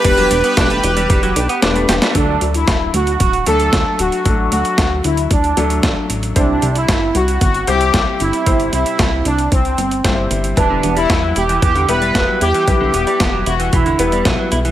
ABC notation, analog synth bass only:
X:1
M:4/4
L:1/8
Q:1/4=114
K:Dmix
V:1 name="Analog synth bass" clef=bass
E,,, E,,, E,,, E,,, E,,, B,,, E,,, E,,, | D,, D,, D,,, D,, D,,, D,, D,, D,,, | A,,, D,, D,, D,, D,, D,, A,,, A,,, | C,, C,, G,,, C,, G,,, C,, C,, G,,, |
G,,, C,, C,, C,, C,, G,,, G,,, G,,, | E,,, E,,, E,, E,,, E,, E,,, E,,, E,, | B,,, E,,, E,,, E,,, E,,, E,,, B,,, B,,, |]